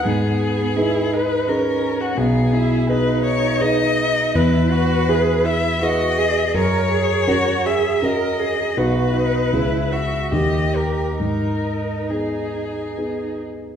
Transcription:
<<
  \new Staff \with { instrumentName = "Violin" } { \time 3/4 \key gis \minor \tempo 4 = 81 gis'4. b'8 ais'8. fis'16 | gis'4 b'8 cis''8 dis''4 | b'4. e''8 dis''4 | cis''4. e''8 dis''4 |
b'4. e''8 dis''8 ais'8 | ais'4 gis'4. r8 | }
  \new Staff \with { instrumentName = "Cello" } { \time 3/4 \key gis \minor b4 e'8 dis'8 cis'4 | b8 e'8 dis'2 | e'8 fis'8 gis'8 e'8 fis'8 gis'8 | ais'8 gis'8 fis'8 gis'8 ais'8 gis'8 |
fis'8 dis'8 e'8 fis'8 g'4 | dis'2~ dis'8 r8 | }
  \new Staff \with { instrumentName = "Grand piano" } { \time 3/4 \key gis \minor gis,4 <dis' gis' b'>4 <dis' gis' b'>4 | b,,4 <dis' gis' b'>4 <dis' gis' b'>4 | e,4 <e' gis' b'>4 <e' gis' b'>4 | fis,4 <cis' fis' ais'>4 <cis' fis' ais'>4 |
<b,, dis' fis' b'>4 <cis, cis' e' gis'>4 <dis, ais dis' g'>4 | gis,4 <b dis' gis'>4 <b dis' gis'>4 | }
>>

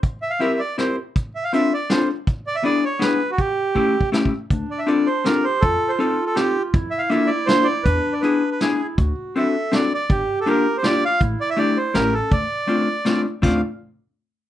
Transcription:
<<
  \new Staff \with { instrumentName = "Accordion" } { \time 3/4 \key d \minor \tempo 4 = 161 r8 e''16 f''16 e''8 d''8 c''8 r8 | r8 e''16 f''16 e''8 d''8 c''8 r8 | r8 d''16 e''16 d''8 cis''8 b'8. fis'16 | g'2 r4 |
r8 d''16 e''16 d''8 c''8 bes'8 c''8 | a'8. c''16 a'8. a'16 g'8. r16 | r8 e''16 f''16 e''8 d''8 c''8 d''8 | b'8. d''16 b'8. b'16 gis'8. r16 |
r4 e''4 d''8 d''8 | g'8. a'16 bes'8. c''16 d''8 f''8 | r8 d''16 e''16 d''8 c''8 bes'8 a'8 | d''2~ d''8 r8 |
f''8 r2 r8 | }
  \new Staff \with { instrumentName = "Clarinet" } { \time 3/4 \key d \minor r2. | r2. | r2. | r2. |
d'2 g'4 | f'2. | e'2. | d'2 e'4 |
fis'4 a'4. r8 | g'2 f'4 | e'2 cis'4 | r2. |
f'8 r2 r8 | }
  \new Staff \with { instrumentName = "Hollow-body jazz guitar" } { \time 3/4 \key d \minor r4 <c' e' g' bes'>8 r8 <c' e' g' bes'>8 r8 | r4 <c' d' f' a'>8 r8 <c' d' f' a'>8 r8 | r4 <b d' e' gis'>8 r8 <b d' e' gis'>8 r8 | r4 <a cis' e' g'>8 r8 <a cis' e' g'>8 r8 |
r4 <c' d' f' a'>8 r8 <c' d' f' a'>8 r8 | r4 <c' ees' f' a'>8 r8 <c' ees' f' a'>8 r8 | r4 <bes d' f' a'>8 r8 <bes d' f' a'>8 r8 | r4 <b d' e' gis'>8 r8 <b d' e' gis'>8 r8 |
r4 <c' d' fis' a'>8 r8 <c' d' fis' a'>8 r8 | r4 <bes d' f' g'>8 r8 <bes d' f' g'>8 r8 | r4 <a d' e' g'>8 r8 <a cis' e' g'>8 r8 | r4 <a c' d' f'>8 r8 <a c' d' f'>8 r8 |
<a c' d' f'>8 r2 r8 | }
  \new Staff \with { instrumentName = "Upright bass" } { \clef bass \time 3/4 \key d \minor r2. | r2. | r2. | r2. |
d,8 r2 r8 | f,8 r2 r8 | f,8 r2 r8 | e,8 r2 r8 |
d,8 r2 r8 | g,,8 r2 r8 | a,,8 r4. a,,4 | d,8 r2 r8 |
d,8 r2 r8 | }
  \new DrumStaff \with { instrumentName = "Drums" } \drummode { \time 3/4 <hh bd>4 hh4 <hh sn>4 | <hh bd>4 hh4 <hh sn>4 | <hh bd>4 hh4 <hh sn>4 | <hh bd>4 \tuplet 3/2 { bd8 r8 bd8 sn8 bd8 r8 } |
<hh bd>4 hh4 <hh sn>4 | <hh bd>4 hh4 <hh sn>4 | <hh bd>4 hh4 <hh sn>4 | <hh bd>4 hh4 <hh sn>4 |
<hh bd>4 hh4 <hh sn>4 | <hh bd>4 hh4 <hh sn>4 | <hh bd>4 hh4 <hh sn>4 | <hh bd>4 hh4 <hh sn>4 |
<cymc bd>4 r4 r4 | }
>>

